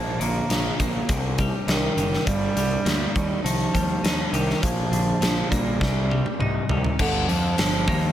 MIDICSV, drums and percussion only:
0, 0, Header, 1, 2, 480
1, 0, Start_track
1, 0, Key_signature, -2, "minor"
1, 0, Tempo, 589971
1, 1845, Time_signature, 4, 2, 24, 8
1, 6606, End_track
2, 0, Start_track
2, 0, Title_t, "Drums"
2, 171, Note_on_c, 9, 42, 57
2, 252, Note_off_c, 9, 42, 0
2, 408, Note_on_c, 9, 42, 80
2, 416, Note_on_c, 9, 38, 84
2, 490, Note_off_c, 9, 42, 0
2, 498, Note_off_c, 9, 38, 0
2, 649, Note_on_c, 9, 36, 72
2, 650, Note_on_c, 9, 42, 61
2, 731, Note_off_c, 9, 36, 0
2, 731, Note_off_c, 9, 42, 0
2, 886, Note_on_c, 9, 42, 74
2, 888, Note_on_c, 9, 36, 96
2, 967, Note_off_c, 9, 42, 0
2, 969, Note_off_c, 9, 36, 0
2, 1124, Note_on_c, 9, 42, 52
2, 1127, Note_on_c, 9, 36, 81
2, 1206, Note_off_c, 9, 42, 0
2, 1209, Note_off_c, 9, 36, 0
2, 1368, Note_on_c, 9, 42, 67
2, 1376, Note_on_c, 9, 38, 108
2, 1449, Note_off_c, 9, 42, 0
2, 1457, Note_off_c, 9, 38, 0
2, 1610, Note_on_c, 9, 42, 53
2, 1691, Note_off_c, 9, 42, 0
2, 1738, Note_on_c, 9, 38, 29
2, 1819, Note_off_c, 9, 38, 0
2, 1847, Note_on_c, 9, 36, 93
2, 1847, Note_on_c, 9, 42, 70
2, 1928, Note_off_c, 9, 42, 0
2, 1929, Note_off_c, 9, 36, 0
2, 2089, Note_on_c, 9, 42, 56
2, 2170, Note_off_c, 9, 42, 0
2, 2329, Note_on_c, 9, 42, 67
2, 2337, Note_on_c, 9, 38, 89
2, 2410, Note_off_c, 9, 42, 0
2, 2419, Note_off_c, 9, 38, 0
2, 2569, Note_on_c, 9, 36, 98
2, 2573, Note_on_c, 9, 42, 51
2, 2650, Note_off_c, 9, 36, 0
2, 2654, Note_off_c, 9, 42, 0
2, 2814, Note_on_c, 9, 42, 79
2, 2895, Note_off_c, 9, 42, 0
2, 3048, Note_on_c, 9, 36, 68
2, 3051, Note_on_c, 9, 42, 55
2, 3130, Note_off_c, 9, 36, 0
2, 3132, Note_off_c, 9, 42, 0
2, 3291, Note_on_c, 9, 42, 75
2, 3299, Note_on_c, 9, 38, 99
2, 3373, Note_off_c, 9, 42, 0
2, 3381, Note_off_c, 9, 38, 0
2, 3529, Note_on_c, 9, 42, 55
2, 3611, Note_off_c, 9, 42, 0
2, 3661, Note_on_c, 9, 38, 26
2, 3742, Note_off_c, 9, 38, 0
2, 3767, Note_on_c, 9, 36, 94
2, 3771, Note_on_c, 9, 42, 70
2, 3849, Note_off_c, 9, 36, 0
2, 3852, Note_off_c, 9, 42, 0
2, 4010, Note_on_c, 9, 42, 49
2, 4092, Note_off_c, 9, 42, 0
2, 4247, Note_on_c, 9, 42, 68
2, 4255, Note_on_c, 9, 38, 92
2, 4329, Note_off_c, 9, 42, 0
2, 4337, Note_off_c, 9, 38, 0
2, 4489, Note_on_c, 9, 36, 71
2, 4493, Note_on_c, 9, 42, 58
2, 4571, Note_off_c, 9, 36, 0
2, 4574, Note_off_c, 9, 42, 0
2, 4728, Note_on_c, 9, 36, 98
2, 4737, Note_on_c, 9, 38, 55
2, 4810, Note_off_c, 9, 36, 0
2, 4819, Note_off_c, 9, 38, 0
2, 4975, Note_on_c, 9, 48, 54
2, 5056, Note_off_c, 9, 48, 0
2, 5092, Note_on_c, 9, 48, 50
2, 5173, Note_off_c, 9, 48, 0
2, 5211, Note_on_c, 9, 47, 71
2, 5292, Note_off_c, 9, 47, 0
2, 5446, Note_on_c, 9, 43, 82
2, 5528, Note_off_c, 9, 43, 0
2, 5569, Note_on_c, 9, 43, 70
2, 5650, Note_off_c, 9, 43, 0
2, 5690, Note_on_c, 9, 36, 86
2, 5691, Note_on_c, 9, 49, 81
2, 5771, Note_off_c, 9, 36, 0
2, 5773, Note_off_c, 9, 49, 0
2, 5933, Note_on_c, 9, 46, 48
2, 6014, Note_off_c, 9, 46, 0
2, 6168, Note_on_c, 9, 46, 66
2, 6176, Note_on_c, 9, 38, 90
2, 6249, Note_off_c, 9, 46, 0
2, 6257, Note_off_c, 9, 38, 0
2, 6409, Note_on_c, 9, 36, 93
2, 6409, Note_on_c, 9, 46, 52
2, 6490, Note_off_c, 9, 36, 0
2, 6491, Note_off_c, 9, 46, 0
2, 6606, End_track
0, 0, End_of_file